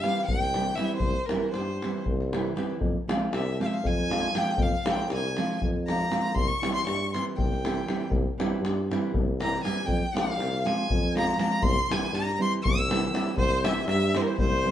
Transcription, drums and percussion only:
0.04 davul high medium
0.28 davul low medium
0.42 davul high soft
0.54 davul high medium
0.67 davul high soft
0.78 davul high medium
0.89 davul high soft
1.00 davul low medium
1.29 davul high medium
1.54 davul high medium
1.82 davul high medium
2.06 davul low medium
2.21 davul high soft
2.33 davul high medium
2.45 davul high soft
2.57 davul high medium
2.70 davul high soft
2.81 davul low medium
3.09 davul high medium
3.33 davul high medium
3.61 davul high soft
3.85 davul low medium
3.98 davul high soft
4.11 davul high medium
4.24 davul high soft
4.35 davul high medium
4.47 davul high soft
4.58 davul low medium
4.86 davul high medium
4.98 davul high soft
5.10 davul high medium
5.24 davul high soft
5.37 davul high medium
5.50 davul high soft
5.62 davul low medium
5.88 davul high medium
6.01 davul high soft
6.12 davul high medium
6.23 davul high soft
6.36 davul low medium
6.63 davul high medium
6.87 davul high medium
7.14 davul high medium
7.38 davul low medium
7.52 davul high soft
7.65 davul high medium
7.77 davul high soft
7.88 davul high medium
8.00 davul high soft
8.11 davul low medium
8.40 davul high medium
8.65 davul high medium
8.91 davul high medium
9.14 davul low medium
9.41 davul high medium
9.53 davul high soft
9.65 davul high medium
9.76 davul high soft
9.88 davul low medium
10.17 davul high medium
10.40 davul high medium
10.67 davul high medium
10.90 davul low medium
11.03 davul high soft
11.17 davul high medium
11.29 davul high soft
11.39 davul high medium
11.52 davul high soft
11.63 davul low loud
11.78 davul high soft
11.92 davul high medium
12.03 davul high soft
12.15 davul high medium
12.29 davul high soft
12.54 davul high soft
12.65 davul low medium
12.79 davul high soft
12.91 davul high medium
13.04 davul high soft
13.15 davul high medium
13.27 davul high soft
13.37 davul low medium
13.52 davul high soft
13.65 davul high medium
13.76 davul high soft
13.88 davul high medium
14.15 davul high medium
14.39 davul low medium

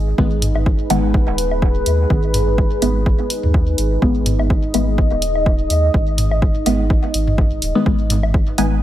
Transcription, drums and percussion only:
0.18 kick loud
0.42 mid tom medium
0.42 open hi-hat medium
0.55 low woodblock medium
0.66 kick loud
0.90 open hi-hat medium
0.90 low woodblock medium
1.14 kick loud
1.38 open hi-hat medium
1.51 low woodblock soft
1.62 kick loud
1.86 open hi-hat medium
2.10 kick loud
2.34 mid tom medium
2.34 open hi-hat medium
2.58 kick loud
2.82 open hi-hat medium
2.82 low woodblock soft
3.06 kick loud
3.30 open hi-hat medium
3.43 mid tom medium
3.54 kick loud
3.78 open hi-hat medium
4.02 kick loud
4.26 mid tom medium
4.26 open hi-hat medium
4.39 low woodblock medium
4.50 kick loud
4.74 open hi-hat medium
4.74 low woodblock soft
4.98 kick loud
5.22 open hi-hat medium
5.35 low woodblock soft
5.46 kick loud
5.70 open hi-hat medium
5.94 kick loud
6.18 mid tom medium
6.18 open hi-hat medium
6.31 low woodblock medium
6.42 kick loud
6.66 open hi-hat medium
6.66 low woodblock soft
6.90 kick loud
7.14 open hi-hat medium
7.27 mid tom medium
7.38 kick loud
7.62 open hi-hat medium
7.86 kick loud
8.10 mid tom medium
8.10 open hi-hat medium
8.23 low woodblock medium
8.34 kick loud
8.58 open hi-hat medium
8.58 low woodblock medium

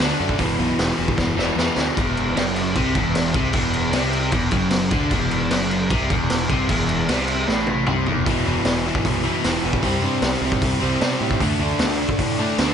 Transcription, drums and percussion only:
0.29 kick medium
0.39 kick loud
0.39 open hi-hat medium
0.79 snare loud
0.79 open hi-hat medium
1.08 kick loud
1.18 kick loud
1.18 snare medium
1.39 snare medium
1.59 snare loud
1.78 snare loud
1.97 kick loud
1.97 crash medium
2.17 crash medium
2.37 snare loud
2.37 crash medium
2.56 crash medium
2.75 kick loud
2.75 crash medium
2.95 kick loud
2.95 crash medium
3.15 snare loud
3.15 crash medium
3.34 kick loud
3.34 crash medium
3.53 kick loud
3.53 crash medium
3.73 crash medium
3.93 snare loud
3.93 crash loud
4.13 crash medium
4.32 kick loud
4.32 crash medium
4.51 kick loud
4.51 crash medium
4.71 snare loud
4.71 crash medium
4.91 kick loud
4.91 crash medium
5.11 kick loud
5.11 crash medium
5.31 crash medium
5.51 snare loud
5.51 crash medium
5.71 crash medium
5.90 kick loud
5.90 crash medium
6.10 kick loud
6.10 crash medium
6.30 snare loud
6.30 crash medium
6.50 kick loud
6.50 crash medium
6.69 kick loud
6.69 crash medium
6.89 crash medium
7.09 snare loud
7.09 crash loud
7.28 crash medium
7.48 snare medium
7.67 high tom medium
7.87 mid tom medium
8.06 floor tom medium
8.26 kick loud
8.26 open hi-hat medium
8.65 snare loud
8.65 open hi-hat medium
8.95 kick medium
9.05 kick loud
9.05 open hi-hat medium
9.44 snare loud
9.44 open hi-hat medium
9.73 kick medium
9.83 kick loud
9.83 open hi-hat medium
10.22 snare loud
10.22 open hi-hat medium
10.52 kick loud
10.62 kick loud
10.62 open hi-hat medium
11.01 snare loud
11.01 open hi-hat medium
11.31 kick medium
11.40 kick medium
11.40 open hi-hat medium
11.79 snare loud
11.79 open hi-hat medium
12.09 kick medium
12.19 kick loud
12.19 open hi-hat medium
12.58 snare loud
12.58 open hi-hat medium

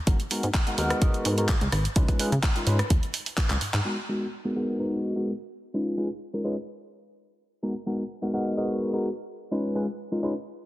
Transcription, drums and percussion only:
0.07 kick loud
0.07 closed hi-hat medium
0.20 closed hi-hat soft
0.31 open hi-hat loud
0.43 closed hi-hat soft
0.54 kick loud
0.54 clap loud
0.54 closed hi-hat loud
0.67 closed hi-hat soft
0.78 open hi-hat loud
0.90 cross-stick medium
0.90 closed hi-hat soft
1.02 kick loud
1.02 closed hi-hat loud
1.14 closed hi-hat soft
1.25 open hi-hat loud
1.38 closed hi-hat soft
1.49 kick loud
1.49 clap loud
1.49 closed hi-hat medium
1.61 closed hi-hat soft
1.72 cross-stick medium
1.72 open hi-hat loud
1.85 closed hi-hat soft
1.96 kick loud
1.96 closed hi-hat medium
2.08 kick medium
2.08 closed hi-hat soft
2.19 open hi-hat loud
2.32 closed hi-hat soft
2.43 kick loud
2.43 clap loud
2.43 closed hi-hat loud
2.56 closed hi-hat soft
2.67 open hi-hat loud
2.79 cross-stick medium
2.79 closed hi-hat soft
2.90 kick loud
2.90 closed hi-hat loud
3.03 closed hi-hat soft
3.14 open hi-hat loud
3.26 open hi-hat medium
3.37 kick loud
3.37 clap loud
3.37 closed hi-hat loud
3.50 clap medium
3.50 closed hi-hat soft
3.61 open hi-hat loud
3.74 clap loud
3.74 closed hi-hat soft

